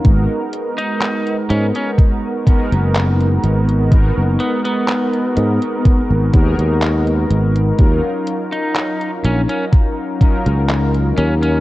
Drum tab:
HH |x-xxxxxxx-xxxxxx|x-xxxxxxx-xxxxxx|x-xxxxxxx-xxxxxx|
CP |----x-------x---|----x-------x---|----x-------x---|
BD |o-------o-o-----|o-------o-o-----|o-------o-o-----|